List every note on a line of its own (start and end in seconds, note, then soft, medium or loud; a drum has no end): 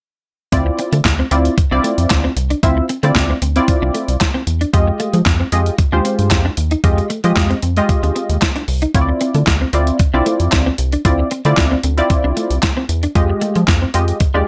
0.52 0.71 D2 loud
0.52 0.98 C4 medium
0.52 0.98 E4 medium
0.52 0.98 F4 medium
0.52 0.98 D5 medium
0.52 kick loud
0.52 closed hi-hat medium
0.66 muted clean electric guitar stroke soft
0.79 0.88 C4 medium
0.79 closed hi-hat medium
0.92 1.01 D3 medium
0.92 1.01 A3 medium
0.92 closed hi-hat soft
1.05 1.23 D2 medium
1.05 muted clean electric guitar stroke soft
1.05 kick medium
1.05 snare loud
1.05 clap medium
1.05 closed hi-hat medium
1.19 1.27 C4 medium
1.31 1.49 D2 medium
1.31 1.40 C4 medium
1.31 1.54 C4 medium
1.31 1.54 E4 medium
1.31 1.54 F4 medium
1.31 1.54 D5 medium
1.31 closed hi-hat medium
1.45 closed hi-hat soft
1.58 muted clean electric guitar stroke soft
1.58 kick loud
1.58 closed hi-hat medium
1.71 1.80 C2 medium
1.71 2.24 C4 medium
1.71 1.79 D4 medium
1.71 2.24 E4 medium
1.71 2.25 F4 medium
1.71 2.25 D5 loud
1.84 1.93 A3 medium
1.84 closed hi-hat medium
1.98 2.06 F2 medium
1.98 closed hi-hat medium
2.10 2.29 D2 medium
2.10 kick loud
2.10 snare medium
2.10 clap medium
2.10 closed hi-hat medium
2.24 2.32 C4 medium
2.36 2.55 C2 medium
2.36 muted clean electric guitar stroke soft
2.36 closed hi-hat medium
2.50 2.58 D4 medium
2.50 closed hi-hat soft
2.63 2.81 D2 loud
2.63 2.86 C4 medium
2.63 2.86 E4 medium
2.63 2.86 F4 medium
2.63 2.86 E5 medium
2.63 kick loud
2.63 closed hi-hat medium
2.77 muted clean electric guitar stroke soft
2.89 2.98 C4 medium
2.89 closed hi-hat medium
3.03 3.12 D3 medium
3.03 3.11 A3 medium
3.03 3.33 C4 medium
3.03 3.33 E4 medium
3.03 3.34 F4 medium
3.03 3.34 D5 medium
3.03 closed hi-hat soft
3.15 3.34 D2 medium
3.15 muted clean electric guitar stroke soft
3.15 kick medium
3.15 snare loud
3.15 clap medium
3.15 closed hi-hat medium
3.30 3.38 C4 medium
3.42 3.60 D2 medium
3.42 3.51 C4 medium
3.42 closed hi-hat medium
3.56 4.16 C4 medium
3.56 4.16 E4 medium
3.56 4.16 F4 medium
3.56 4.16 D5 loud
3.56 closed hi-hat soft
3.68 muted clean electric guitar stroke soft
3.68 kick loud
3.68 closed hi-hat loud
3.82 3.91 C2 medium
3.82 3.90 D4 medium
3.94 4.03 A3 medium
3.94 closed hi-hat medium
4.08 4.17 C2 medium
4.08 closed hi-hat medium
4.21 kick loud
4.21 snare medium
4.21 clap medium
4.21 closed hi-hat medium
4.34 4.42 C4 medium
4.47 4.65 E2 medium
4.47 muted clean electric guitar stroke soft
4.47 closed hi-hat medium
4.61 4.69 D4 medium
4.61 closed hi-hat soft
4.73 4.92 F2 loud
4.73 5.19 G#3 medium
4.73 5.19 F4 medium
4.73 5.19 G4 medium
4.73 5.19 D#5 medium
4.73 kick loud
4.73 closed hi-hat medium
4.87 muted clean electric guitar stroke soft
5.00 5.09 A3 medium
5.00 closed hi-hat medium
5.13 5.22 F3 medium
5.13 5.22 G#3 medium
5.13 closed hi-hat soft
5.26 5.44 F2 loud
5.26 muted clean electric guitar stroke soft
5.26 kick loud
5.26 snare medium
5.26 clap medium
5.26 closed hi-hat medium
5.40 5.48 C4 medium
5.52 5.71 F2 medium
5.52 5.75 G#3 medium
5.52 5.61 C4 medium
5.52 5.75 F4 medium
5.52 5.75 G4 medium
5.52 5.75 D#5 medium
5.52 closed hi-hat medium
5.66 closed hi-hat soft
5.78 muted clean electric guitar stroke soft
5.78 kick loud
5.78 closed hi-hat medium
5.92 6.01 D#2 medium
5.92 6.45 G#3 medium
5.92 6.00 D4 medium
5.92 6.45 F4 medium
5.92 6.46 G4 medium
5.92 6.46 C5 medium
6.05 6.14 C4 medium
6.05 closed hi-hat medium
6.19 6.33 G2 medium
6.19 closed hi-hat medium
6.30 6.50 F2 medium
6.30 kick loud
6.30 snare medium
6.30 clap medium
6.30 closed hi-hat medium
6.45 6.53 D4 medium
6.57 6.76 D#2 medium
6.57 muted clean electric guitar stroke soft
6.57 closed hi-hat medium
6.71 6.79 D#4 medium
6.71 closed hi-hat soft
6.84 7.02 F2 loud
6.84 7.07 G#3 medium
6.84 7.07 F4 medium
6.84 7.07 G4 medium
6.84 7.07 D#5 medium
6.84 kick loud
6.84 closed hi-hat medium
6.98 muted clean electric guitar stroke soft
6.98 closed hi-hat soft
7.10 7.19 A3 medium
7.10 closed hi-hat medium
7.24 7.33 F3 medium
7.24 7.32 G#3 medium
7.24 7.54 G#3 medium
7.24 7.54 F4 medium
7.24 7.54 G4 medium
7.24 7.54 D#5 loud
7.24 closed hi-hat soft
7.36 7.55 F2 medium
7.36 muted clean electric guitar stroke soft
7.36 kick medium
7.36 snare loud
7.36 clap medium
7.36 closed hi-hat medium
7.50 7.58 C4 medium
7.50 closed hi-hat soft
7.62 7.81 F2 medium
7.62 7.72 C4 medium
7.62 closed hi-hat medium
7.77 8.37 G#3 loud
7.77 8.37 F4 medium
7.77 8.37 G4 medium
7.77 8.37 D#5 loud
7.77 closed hi-hat soft
7.89 muted clean electric guitar stroke soft
7.89 kick loud
7.89 closed hi-hat medium
8.03 8.12 D#2 medium
8.03 8.11 D4 medium
8.03 closed hi-hat soft
8.15 8.24 C4 medium
8.15 closed hi-hat medium
8.29 8.38 D#2 medium
8.29 closed hi-hat medium
8.42 kick medium
8.42 snare loud
8.42 clap medium
8.42 closed hi-hat medium
8.56 8.64 D4 medium
8.56 closed hi-hat soft
8.68 8.86 C2 medium
8.68 muted clean electric guitar stroke soft
8.68 open hi-hat medium
8.82 8.90 D#4 medium
8.82 closed hi-hat soft
8.95 9.13 D2 loud
8.95 9.40 C4 medium
8.95 9.40 E4 medium
8.95 9.40 F4 medium
8.95 9.02 C#5 medium
8.95 kick loud
8.95 closed hi-hat medium
9.01 9.44 D5 medium
9.09 muted clean electric guitar stroke soft
9.21 9.30 C4 medium
9.21 closed hi-hat medium
9.35 9.43 D3 medium
9.35 9.43 A3 medium
9.35 closed hi-hat soft
9.47 9.65 D2 medium
9.47 muted clean electric guitar stroke soft
9.47 kick loud
9.47 snare loud
9.47 clap medium
9.47 closed hi-hat medium
9.61 9.69 C4 medium
9.73 9.91 D2 medium
9.73 9.82 C4 medium
9.73 9.96 C4 medium
9.73 9.97 E4 medium
9.73 9.97 F4 medium
9.73 9.97 D5 medium
9.73 closed hi-hat medium
9.87 closed hi-hat soft
9.99 muted clean electric guitar stroke soft
9.99 kick loud
9.99 closed hi-hat medium
10.13 10.22 C2 medium
10.13 10.66 C4 medium
10.13 10.22 D4 medium
10.13 10.67 E4 medium
10.13 10.67 F4 medium
10.13 10.67 D5 medium
10.26 10.35 A3 medium
10.26 closed hi-hat medium
10.40 10.48 F2 medium
10.40 closed hi-hat soft
10.52 10.71 D2 medium
10.52 kick loud
10.52 snare medium
10.52 clap medium
10.52 closed hi-hat medium
10.66 10.74 C4 medium
10.78 10.97 C2 medium
10.78 muted clean electric guitar stroke soft
10.78 closed hi-hat medium
10.92 11.01 D4 medium
10.92 closed hi-hat soft
11.05 11.23 D2 loud
11.05 11.28 C4 medium
11.05 11.28 E4 medium
11.05 11.28 F4 medium
11.05 11.28 D5 medium
11.05 kick loud
11.05 closed hi-hat medium
11.19 muted clean electric guitar stroke soft
11.31 11.40 C4 medium
11.31 closed hi-hat medium
11.45 11.54 D3 medium
11.45 11.53 A3 medium
11.45 11.75 C4 medium
11.45 11.75 E4 medium
11.45 11.75 F4 medium
11.45 11.75 D5 loud
11.45 closed hi-hat soft
11.57 11.76 D2 loud
11.57 muted clean electric guitar stroke soft
11.57 kick loud
11.57 snare loud
11.57 clap medium
11.57 closed hi-hat medium
11.71 11.79 C4 medium
11.83 12.02 D2 medium
11.83 11.93 C4 medium
11.83 closed hi-hat medium
11.97 12.57 C4 medium
11.97 12.58 E4 medium
11.97 12.58 F4 medium
11.97 12.58 D5 loud
11.97 closed hi-hat soft
12.10 muted clean electric guitar stroke soft
12.10 kick loud
12.10 closed hi-hat medium
12.24 12.33 C2 medium
12.24 12.32 D4 medium
12.37 12.46 A3 medium
12.37 closed hi-hat medium
12.50 12.59 C2 medium
12.50 closed hi-hat soft
12.62 kick loud
12.62 snare medium
12.62 clap medium
12.62 closed hi-hat medium
12.77 12.85 C4 medium
12.89 13.07 E2 medium
12.89 muted clean electric guitar stroke soft
12.89 closed hi-hat medium
13.03 13.11 D4 medium
13.03 closed hi-hat soft
13.15 13.34 F2 loud
13.15 13.61 G#3 medium
13.15 13.61 F4 medium
13.15 13.61 G4 medium
13.15 13.61 D#5 medium
13.15 kick loud
13.15 closed hi-hat medium
13.30 muted clean electric guitar stroke soft
13.41 13.50 A3 medium
13.41 closed hi-hat medium
13.55 13.64 F3 loud
13.55 13.64 G#3 medium
13.55 closed hi-hat soft
13.68 13.86 F2 medium
13.68 muted clean electric guitar stroke soft
13.68 kick loud
13.68 snare loud
13.68 clap medium
13.68 closed hi-hat medium
13.82 13.90 C4 medium
13.94 14.13 F2 medium
13.94 14.17 G#3 medium
13.94 14.03 C4 medium
13.94 14.17 F4 medium
13.94 14.17 G4 medium
13.94 14.18 D#5 medium
13.94 closed hi-hat medium
14.08 closed hi-hat soft
14.20 muted clean electric guitar stroke soft
14.20 kick loud
14.20 closed hi-hat medium
14.34 14.43 D#2 medium
14.34 14.48 G#3 medium
14.34 14.43 D4 medium
14.34 14.48 F4 medium
14.34 14.48 G4 medium
14.34 14.48 D5 medium